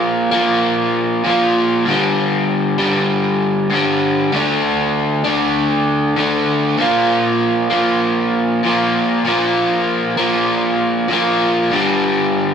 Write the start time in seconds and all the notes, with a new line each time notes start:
Already playing: A#2 F3 A#3
0.31 A#2 F3 A#3
1.24 A#2 F3
1.28 A#3
1.86 G2 D3
1.90 G3
2.78 G2 D3 G3
3.70 G2 D3 G3
4.32 D3 A3 D4
5.24 A3 D4
5.28 D3
6.16 D3 A3 D4
6.78 A#2 F3
6.82 A#3
7.70 A#2 F3 A#3
8.63 A#2 F3 A#3
9.25 A#2 F3 A#3
10.17 A#2 F3 A#3
11.08 A#2 F3
11.13 A#3
11.71 G2 D3 G3